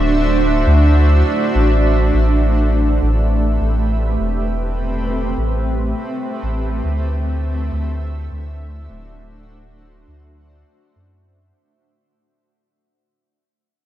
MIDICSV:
0, 0, Header, 1, 3, 480
1, 0, Start_track
1, 0, Tempo, 588235
1, 1741, Time_signature, 4, 2, 24, 8
1, 11305, End_track
2, 0, Start_track
2, 0, Title_t, "Ambient pad"
2, 0, Program_c, 0, 92
2, 0, Note_on_c, 0, 57, 73
2, 0, Note_on_c, 0, 62, 80
2, 0, Note_on_c, 0, 66, 66
2, 0, Note_on_c, 0, 72, 82
2, 0, Note_on_c, 0, 76, 77
2, 1730, Note_off_c, 0, 57, 0
2, 1740, Note_on_c, 0, 57, 70
2, 1741, Note_off_c, 0, 66, 0
2, 1743, Note_off_c, 0, 72, 0
2, 1844, Note_on_c, 0, 60, 83
2, 1949, Note_on_c, 0, 71, 75
2, 2145, Note_on_c, 0, 67, 84
2, 3055, Note_off_c, 0, 62, 0
2, 5581, Note_off_c, 0, 67, 0
2, 5582, Note_off_c, 0, 71, 0
2, 5955, Note_on_c, 0, 62, 65
2, 6250, Note_on_c, 0, 66, 83
2, 6267, Note_on_c, 0, 72, 66
2, 6464, Note_off_c, 0, 60, 0
2, 9419, Note_off_c, 0, 72, 0
2, 9420, Note_off_c, 0, 57, 0
2, 9420, Note_off_c, 0, 66, 0
2, 9421, Note_off_c, 0, 76, 0
2, 9422, Note_off_c, 0, 62, 0
2, 11305, End_track
3, 0, Start_track
3, 0, Title_t, "Sub bass"
3, 0, Program_c, 1, 38
3, 0, Note_on_c, 1, 26, 103
3, 521, Note_off_c, 1, 26, 0
3, 539, Note_on_c, 1, 38, 103
3, 1001, Note_off_c, 1, 38, 0
3, 1263, Note_on_c, 1, 33, 91
3, 1723, Note_off_c, 1, 33, 0
3, 1743, Note_on_c, 1, 33, 95
3, 2443, Note_off_c, 1, 33, 0
3, 2463, Note_on_c, 1, 33, 103
3, 2923, Note_off_c, 1, 33, 0
3, 2943, Note_on_c, 1, 33, 85
3, 3403, Note_off_c, 1, 33, 0
3, 3423, Note_on_c, 1, 28, 90
3, 4363, Note_off_c, 1, 28, 0
3, 4383, Note_on_c, 1, 33, 100
3, 4843, Note_off_c, 1, 33, 0
3, 5245, Note_on_c, 1, 33, 89
3, 5563, Note_off_c, 1, 33, 0
3, 5583, Note_on_c, 1, 38, 95
3, 6283, Note_off_c, 1, 38, 0
3, 6301, Note_on_c, 1, 38, 98
3, 6762, Note_off_c, 1, 38, 0
3, 6783, Note_on_c, 1, 38, 85
3, 7243, Note_off_c, 1, 38, 0
3, 7263, Note_on_c, 1, 26, 92
3, 8203, Note_off_c, 1, 26, 0
3, 8220, Note_on_c, 1, 38, 95
3, 8681, Note_off_c, 1, 38, 0
3, 8940, Note_on_c, 1, 42, 93
3, 9402, Note_off_c, 1, 42, 0
3, 11305, End_track
0, 0, End_of_file